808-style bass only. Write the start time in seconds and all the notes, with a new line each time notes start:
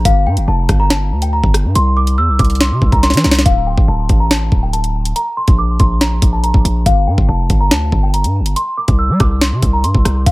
0.05 G1
0.26 G2
0.37 G1
0.48 F1
0.69 G1
1.12 D2
1.44 G1
1.65 G2
1.75 C2
2.18 E2
2.29 C2
2.39 C2
2.71 C3
2.82 C2
2.92 C2
3.14 E3
3.24 C2
3.46 D1
3.78 A1
3.88 D1
4.10 A1
4.52 D1
5.48 A#1
5.80 A#1
6.22 A#1
6.54 A#1
6.65 A#1
6.86 G1
7.07 G2
7.18 G1
7.29 F1
7.50 G1
7.71 D2
7.92 G1
8.24 G2
8.40 G1
8.88 C2
9.10 G3
9.20 C2
9.52 C3
9.63 C2
9.84 G2
9.95 C2
10.05 C2
10.26 D1